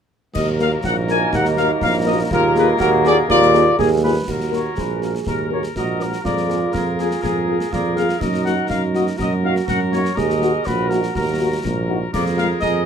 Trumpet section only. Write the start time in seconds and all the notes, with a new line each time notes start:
0.35 D#5
0.60 F5
0.84 F#5
1.10 G#5
1.35 F#5
1.58 F5
1.82 F5
2.06 D#5
2.32 A#4
2.57 B4
2.80 A#4
3.05 D5
3.30 D5
3.78 G#4
4.03 B4
4.29 A#4
4.55 C#5
4.80 B4
5.04 A#4
5.27 A#4
5.53 C#5
5.76 D#5
6.00 A#4
6.24 D5
6.73 A#4
6.99 G#4
7.24 G#4
7.73 D5
7.97 F5
8.20 D#5
8.45 F#5
8.70 F5
8.95 D#5
9.20 D#5
9.43 F5
9.68 F#5
9.93 C#5
10.17 D#5
10.66 B4
10.89 A#4
11.15 A#4
12.13 D5
12.37 F5
12.61 D#5